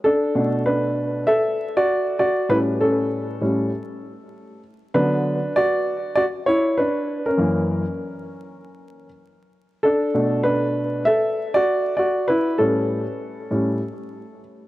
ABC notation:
X:1
M:4/4
L:1/16
Q:"Swing 16ths" 1/4=98
K:Bm
V:1 name="Grand piano"
[DA]4 [DB]4 [Ae]3 [Fd]3 [Fd]2 | [EB]2 [CA]12 z2 | [DB]4 [Fd]4 [Fd]2 [Ec]2 [DB]3 [C^A]- | [C^A]8- [CA]3 z4 z |
[DA]4 [DB]4 [Ae]3 [Fd]3 [Fd]2 | [EB]2 A12 z2 |]
V:2 name="Grand piano" clef=bass
z2 [B,,A,D]6 z8 | [A,,G,C]6 [A,,G,C]2 z8 | [D,F,B,]2 z12 z2 | [F,,E,^A,]2 z12 z2 |
z2 [B,,A,D]6 z8 | z2 [A,,G,C]2 z4 [A,,G,C]2 z6 |]